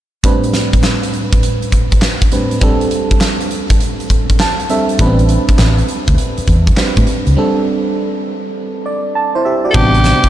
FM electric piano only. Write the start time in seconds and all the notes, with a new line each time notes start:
0.23 A2 G3 C4 D4 B4
2.32 A2 G3 C4 D4 B4
2.61 G3 C4 D4 A4
4.40 A5
4.70 G3 C4 D4 A4 E5
4.99 G3 B3 D4 B4
5.06 C4
6.77 G3 C4 D4 B4
7.36 G3 C4 D4 A4
8.86 D5
9.15 A5
9.35 E4 C5
9.45 G4 E5
9.65 F#4 D5
9.74 C3 G3 B3 D4